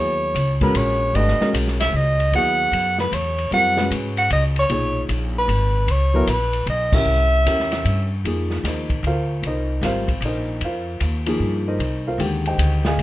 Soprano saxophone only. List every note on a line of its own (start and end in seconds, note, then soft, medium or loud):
0.00 0.58 C#5 medium
0.63 0.78 B4 medium
0.77 1.17 C#5 medium
1.16 1.55 D#5 medium
1.81 1.97 E5 medium
1.96 2.34 D#5 medium
2.35 2.95 F#5 loud
3.00 3.16 B4 medium
3.14 3.52 C#5 medium
3.54 3.89 F#5 medium
4.18 4.30 F#5 medium
4.33 4.44 D#5 medium
4.59 5.02 C#5 medium
5.38 5.93 B4 medium
5.91 6.29 C#5 medium
6.30 6.66 B4 medium
6.70 6.96 D#5 medium
6.95 8.12 E5 medium